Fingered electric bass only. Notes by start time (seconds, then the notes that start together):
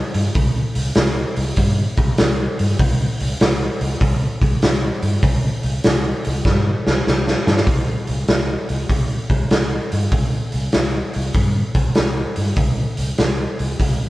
0.15 G2
0.35 C2
0.76 C2
0.97 C2
1.37 C2
1.57 G2
1.98 C2
2.20 C2
2.60 G2
2.79 C2
3.21 C2
3.41 C2
3.81 C2
4.01 C2
4.42 C2
4.64 C2
5.03 G2
5.23 C2
5.64 C2
5.86 C2
6.27 C2
6.45 G2
6.87 C2
7.08 C2
7.47 G2
7.67 C2
8.09 C2
8.29 C2
8.70 C2
8.90 C2
9.30 C2
9.51 C2
9.93 G2
10.12 C2
10.54 C2
10.75 C2
11.16 C2
11.35 G2
11.75 C2
11.98 C2
12.37 G2
12.57 C2
12.98 C2
13.19 C2
13.60 C2
13.80 C2